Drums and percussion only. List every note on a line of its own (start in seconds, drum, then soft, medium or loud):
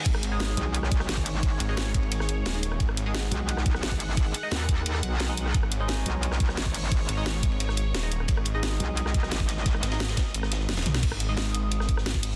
0.06 kick loud
0.06 closed hi-hat medium
0.06 crash medium
0.06 ride medium
0.14 cross-stick medium
0.23 closed hi-hat loud
0.23 ride medium
0.40 snare loud
0.40 closed hi-hat medium
0.40 ride medium
0.49 snare medium
0.57 closed hi-hat loud
0.57 ride medium
0.74 closed hi-hat medium
0.74 ride medium
0.83 cross-stick soft
0.83 snare soft
0.91 kick loud
0.91 closed hi-hat loud
0.91 ride medium
1.00 cross-stick medium
1.00 snare soft
1.09 snare loud
1.09 closed hi-hat medium
1.09 ride medium
1.17 kick medium
1.26 closed hi-hat loud
1.26 open hi-hat medium
1.43 kick loud
1.43 closed hi-hat medium
1.43 ride medium
1.60 closed hi-hat medium
1.60 ride medium
1.77 snare loud
1.77 closed hi-hat medium
1.77 ride medium
1.94 kick loud
1.94 closed hi-hat medium
1.94 ride medium
2.03 ride soft
2.12 closed hi-hat medium
2.12 ride medium
2.20 cross-stick soft
2.20 snare soft
2.29 closed hi-hat medium
2.29 ride medium
2.46 snare loud
2.46 closed hi-hat medium
2.46 ride medium
2.63 closed hi-hat loud
2.63 ride medium
2.72 cross-stick soft
2.80 kick loud
2.80 closed hi-hat medium
2.80 ride medium
2.89 cross-stick medium
2.97 closed hi-hat loud
2.97 ride medium
3.14 snare loud
3.14 closed hi-hat medium
3.14 ride loud
3.23 snare medium
3.31 closed hi-hat medium
3.31 ride medium
3.49 closed hi-hat medium
3.49 ride medium
3.57 cross-stick soft
3.57 snare soft
3.66 kick loud
3.66 closed hi-hat medium
3.66 ride medium
3.75 cross-stick medium
3.75 snare soft
3.83 snare loud
3.83 closed hi-hat medium
3.83 ride loud
3.92 kick medium
4.00 closed hi-hat medium
4.00 open hi-hat medium
4.17 kick loud
4.17 closed hi-hat medium
4.17 ride medium
4.34 closed hi-hat medium
4.34 ride medium
4.51 snare loud
4.51 closed hi-hat medium
4.51 ride medium
4.69 kick loud
4.69 closed hi-hat medium
4.69 ride medium
4.78 ride soft
4.86 closed hi-hat medium
4.86 ride loud
4.95 cross-stick soft
4.95 snare soft
5.03 closed hi-hat medium
5.03 ride medium
5.20 snare loud
5.20 closed hi-hat medium
5.20 ride medium
5.37 closed hi-hat medium
5.37 ride medium
5.46 cross-stick soft
5.54 kick loud
5.54 closed hi-hat medium
5.54 ride medium
5.63 cross-stick medium
5.72 closed hi-hat medium
5.72 ride medium
5.88 snare loud
5.88 closed hi-hat medium
5.88 ride medium
5.98 snare medium
6.06 closed hi-hat medium
6.06 ride medium
6.23 closed hi-hat medium
6.23 ride medium
6.31 cross-stick soft
6.31 snare soft
6.40 kick loud
6.40 closed hi-hat medium
6.40 ride medium
6.49 cross-stick medium
6.49 snare soft
6.57 snare loud
6.57 closed hi-hat medium
6.57 ride medium
6.66 kick medium
6.74 closed hi-hat medium
6.74 open hi-hat medium
6.92 kick loud
6.92 closed hi-hat medium
6.92 ride medium
7.09 closed hi-hat medium
7.09 ride medium
7.26 snare loud
7.26 closed hi-hat medium
7.26 ride medium
7.43 kick loud
7.43 closed hi-hat medium
7.43 ride medium
7.52 ride soft
7.60 closed hi-hat medium
7.60 ride medium
7.69 cross-stick soft
7.69 snare soft
7.77 closed hi-hat medium
7.77 ride medium
7.94 snare loud
7.94 closed hi-hat medium
7.94 ride medium
8.11 closed hi-hat loud
8.11 ride medium
8.20 cross-stick soft
8.28 kick loud
8.28 closed hi-hat medium
8.28 ride medium
8.37 cross-stick medium
8.45 closed hi-hat medium
8.45 ride medium
8.63 snare loud
8.63 closed hi-hat medium
8.63 ride medium
8.72 snare medium
8.80 closed hi-hat medium
8.80 ride medium
8.97 closed hi-hat medium
8.97 ride medium
9.06 cross-stick soft
9.06 snare soft
9.14 kick loud
9.14 closed hi-hat medium
9.14 ride medium
9.23 cross-stick medium
9.23 snare soft
9.31 snare loud
9.31 closed hi-hat medium
9.31 ride medium
9.40 kick medium
9.49 snare loud
9.49 closed hi-hat loud
9.49 ride medium
9.57 snare medium
9.66 kick loud
9.66 snare loud
9.66 closed hi-hat medium
9.66 ride medium
9.74 cross-stick medium
9.83 snare loud
9.83 closed hi-hat loud
9.83 ride medium
9.92 snare loud
9.92 ride medium
9.99 snare loud
9.99 closed hi-hat medium
9.99 ride medium
10.09 snare loud
10.09 ride medium
10.17 kick loud
10.17 snare loud
10.17 snare soft
10.17 closed hi-hat loud
10.17 ride medium
10.27 snare medium
10.34 closed hi-hat medium
10.34 ride medium
10.43 cross-stick soft
10.43 snare soft
10.52 snare loud
10.52 closed hi-hat loud
10.52 ride medium
10.60 snare soft
10.69 snare loud
10.69 closed hi-hat medium
10.69 high tom medium
10.69 ride medium
10.72 snare loud
10.72 ride medium
10.77 snare medium
10.77 ride medium
10.81 snare medium
10.81 ride medium
10.86 snare loud
10.86 closed hi-hat loud
10.86 mid tom medium
10.86 ride medium
10.94 cross-stick soft
10.94 snare medium
10.94 snare loud
10.94 ride medium
11.03 kick loud
11.03 closed hi-hat medium
11.03 crash loud
11.03 ride medium
11.12 cross-stick medium
11.20 closed hi-hat loud
11.20 ride medium
11.37 snare loud
11.37 closed hi-hat medium
11.37 ride medium
11.47 snare medium
11.55 closed hi-hat loud
11.55 ride medium
11.71 closed hi-hat medium
11.71 ride medium
11.80 cross-stick soft
11.80 snare soft
11.88 kick loud
11.88 closed hi-hat medium
11.88 ride medium
11.97 cross-stick medium
11.97 snare soft
12.06 snare loud
12.06 closed hi-hat medium
12.06 ride medium
12.14 kick medium
12.23 closed hi-hat loud
12.23 open hi-hat medium